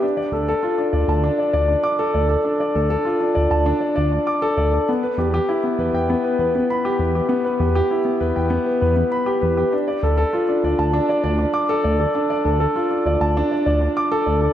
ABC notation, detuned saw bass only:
X:1
M:4/4
L:1/16
Q:1/4=99
K:Ephr
V:1 name="Detuned saw bass" clef=bass
z2 D,, z3 D,, D,, z2 D,, z3 D,, z | z2 D,, z3 D,, D,, z2 D,, z3 D,, z | z2 E,, z3 E,, E,, z2 E,, z3 E,, z | z2 E,, z3 E,, E,, z2 E,, z3 E,, z |
z2 D,, z3 D,, D,, z2 D,, z3 D,, z | z2 D,, z3 D,, D,, z2 D,, z3 D,, z |]